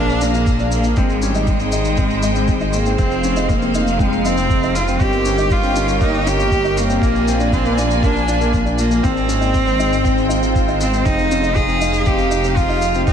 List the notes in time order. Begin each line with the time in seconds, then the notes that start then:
Already playing: A#1 A#3 D4 G#4 A#4 F5
0.10 shaker
0.21 A#3 D4, shaker
0.34 A#3, shaker
0.46 kick, shaker
0.59 D4, shaker
0.72 A#3, shaker
0.84 A#3, shaker
0.97 G#1 G#3 C4 D#4 C5 G5, kick, shaker
1.10 shaker
1.22 G3 C#4, shaker
1.35 D#4, shaker
1.47 G#3, kick, shaker
1.60 C4, shaker
1.72 D#4, shaker
1.85 shaker
1.97 C4, kick, shaker
2.10 shaker
2.23 D#4, shaker
2.35 C4, shaker
2.48 kick, shaker
2.61 D#4, shaker
2.73 A#3, shaker
2.86 C4, shaker
2.98 F1 C4 D#4 F5, kick, shaker
3.11 shaker
3.24 C#4, shaker
3.36 D#4, shaker
3.49 A#3, kick, shaker
3.62 C4, shaker
3.74 D#4, shaker
3.87 shaker
3.99 G#3 C4, kick, shaker
4.13 shaker
4.25 C4 D#4, shaker
4.37 C4, shaker
4.50 kick, shaker
4.63 D#4, shaker
4.75 F4, shaker
4.88 C4, shaker
5.00 G1 C4 D#4 G4 A#4 C#5 G5, kick, shaker
5.13 shaker
5.25 C#4, shaker
5.38 D#4, shaker
5.50 F4, kick, shaker
5.63 C4, shaker
5.76 C#4, shaker
5.89 shaker
6.01 A#3 D#4, kick, shaker
6.14 shaker
6.26 C#4 G4, shaker
6.39 A#3, shaker
6.51 kick, shaker
6.64 D#4, shaker
6.77 A#3, shaker
6.90 C4, shaker
7.01 A#1 A#3 F4 D5 G#5, kick, shaker
7.15 shaker
7.28 C4, shaker
7.40 D4, shaker
7.52 C4, kick, shaker
7.66 A#3, shaker
7.78 A#3 D4, shaker
7.91 shaker
8.03 A#3 D4, kick, shaker
8.16 shaker
8.28 D4, shaker
8.41 A#3, shaker
8.53 kick, shaker
8.66 D4, shaker
8.78 A#3, shaker
8.91 A#3, shaker
9.03 G#1 G#3 C4 D#4 C5 G5, kick, shaker
9.17 shaker
9.28 C#4, shaker
9.41 D#4, shaker
9.54 kick, shaker
9.67 C4, shaker
9.79 D#4, shaker
9.93 shaker
10.04 C4, kick, swell, shaker
10.18 shaker
10.29 D#4, shaker
10.43 C4, shaker
10.55 kick, shaker
10.68 D#4, shaker
10.81 C4, shaker
10.93 C4, shaker
11.05 F1 C4 D#4 F5, kick, shaker
11.19 shaker
11.31 C#4, shaker
11.43 D#4, shaker
11.55 G#4, kick, shaker
11.68 C4, shaker
11.81 D#4, shaker
11.94 shaker
12.06 C4 G4, kick, shaker
12.19 shaker
12.31 D#4, shaker
12.44 C4, shaker
12.57 F4, kick, shaker
12.69 D#4, shaker
12.82 shaker
12.95 C4, shaker
13.07 G1 C4 D#4 A#4 C#5 G5, kick, shaker